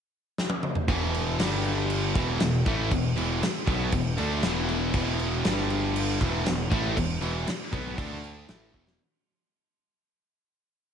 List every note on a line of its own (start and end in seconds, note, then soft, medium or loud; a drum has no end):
0.38 snare medium
0.50 high tom medium
0.63 mid tom medium
0.75 floor tom medium
0.88 1.36 E1 medium
0.88 1.39 E2 medium
0.88 1.40 B2 medium
0.88 1.40 E3 loud
0.88 kick loud
0.88 crash medium
1.14 crash medium
1.39 2.12 G1 medium
1.39 2.15 G2 loud
1.39 2.16 D3 loud
1.39 2.16 G3 loud
1.39 snare loud
1.39 crash medium
1.64 crash medium
1.90 crash medium
2.15 2.40 E1 medium
2.15 2.40 E2 medium
2.15 2.40 B2 loud
2.15 2.41 E3 loud
2.15 kick loud
2.15 crash medium
2.40 2.65 E1 medium
2.40 2.62 E2 medium
2.40 2.62 B2 medium
2.40 snare loud
2.40 crash medium
2.66 2.90 A1 loud
2.66 2.92 A2 medium
2.66 2.92 E3 medium
2.66 2.92 A3 medium
2.66 kick loud
2.66 crash medium
2.91 3.16 E1 medium
2.91 3.12 E2 medium
2.91 3.13 B2 medium
2.91 kick loud
2.91 crash medium
3.17 3.41 E1 medium
3.17 3.41 E2 loud
3.17 3.42 B2 medium
3.17 3.42 E3 loud
3.17 crash medium
3.42 muted overdriven electric guitar stroke medium
3.42 muted distorted electric guitar stroke medium
3.42 muted picked electric bass stroke soft
3.42 snare loud
3.42 crash medium
3.67 3.92 B1 loud
3.67 3.92 B2 loud
3.67 3.93 F#3 medium
3.67 3.93 B3 loud
3.67 kick loud
3.67 crash medium
3.92 4.17 E1 medium
3.92 4.13 E2 medium
3.92 4.14 B2 medium
3.92 kick loud
3.92 crash medium
4.18 4.43 D2 medium
4.18 4.43 D3 loud
4.18 4.43 A3 medium
4.18 4.44 D4 loud
4.18 crash medium
4.42 4.91 E1 medium
4.42 4.92 E2 loud
4.42 4.93 B2 loud
4.42 4.93 E3 loud
4.42 snare loud
4.42 crash medium
4.69 crash medium
4.93 5.41 E1 medium
4.93 5.43 E2 loud
4.93 5.43 B2 loud
4.93 5.44 E3 loud
4.93 kick loud
4.93 crash medium
5.19 crash medium
5.44 6.17 G1 medium
5.44 6.19 G2 medium
5.44 6.20 D3 loud
5.44 6.20 G3 loud
5.44 snare loud
5.44 crash medium
5.70 crash medium
5.96 crash medium
6.21 6.45 E1 medium
6.21 6.44 E2 medium
6.21 6.45 B2 loud
6.21 6.46 E3 medium
6.21 kick loud
6.21 crash medium
6.45 6.70 E1 medium
6.45 6.66 E2 medium
6.45 6.66 B2 medium
6.45 snare loud
6.45 crash medium
6.70 6.95 A1 medium
6.70 6.95 A2 medium
6.70 6.96 E3 medium
6.70 6.96 A3 medium
6.70 kick loud
6.70 crash medium
6.96 7.21 E1 medium
6.96 7.17 E2 medium
6.96 7.17 B2 medium
6.96 kick medium
6.96 crash medium
7.21 7.45 E1 medium
7.21 7.45 E2 medium
7.21 7.46 B2 loud
7.21 7.47 E3 loud
7.21 crash medium
7.47 muted overdriven electric guitar stroke medium
7.47 muted distorted electric guitar stroke medium
7.47 muted picked electric bass stroke soft
7.47 snare loud
7.47 crash medium
7.72 7.96 B1 loud
7.72 7.97 B2 medium
7.72 7.97 F#3 loud
7.72 7.98 B3 loud
7.72 kick loud
7.72 crash medium
7.98 8.45 D2 medium
7.98 8.48 D3 medium
7.98 8.48 A3 medium
7.98 8.48 D4 loud
7.98 kick loud
7.98 crash medium
8.24 crash medium
8.48 8.73 A1 medium
8.48 8.73 A2 medium
8.48 8.74 E3 medium
8.48 8.74 A3 medium
8.48 snare loud
8.48 crash medium
8.74 8.98 E1 loud
8.74 8.99 E2 medium
8.74 8.99 B2 medium
8.74 8.99 E3 medium
8.74 kick medium
8.87 snare medium